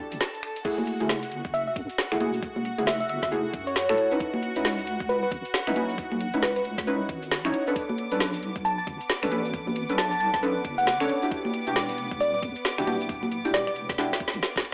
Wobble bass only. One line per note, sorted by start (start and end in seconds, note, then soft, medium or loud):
0.11 0.19 G1 loud
1.00 1.42 F#1 loud
1.76 1.88 F#2 medium
2.11 2.22 F#1 medium
2.20 2.76 E1 medium
2.78 3.20 F#1 loud
3.23 3.52 F#1 medium
3.54 3.87 F#2 medium
3.89 3.97 C#2 medium
4.56 4.98 C#2 loud
5.31 5.43 G#1 medium
5.67 5.77 C#2 medium
5.76 6.31 B1 medium
6.33 6.76 C#2 loud
6.78 7.08 C#2 medium
7.09 7.42 G#1 medium
7.45 7.53 G#1 loud
8.11 8.53 B1 loud
8.56 8.85 B1 medium
8.87 8.99 F#1 medium
9.23 9.33 B1 medium
9.31 9.87 A1 medium
9.89 10.31 B1 loud
10.34 10.63 B1 medium
10.65 10.98 F#1 medium
11.00 11.08 F#1 medium
11.67 12.09 E1 loud
12.42 12.54 E2 medium
12.78 12.88 E1 medium
12.87 13.42 D1 medium
13.45 13.87 E1 loud
13.89 14.19 E1 medium
14.34 14.41 B1 medium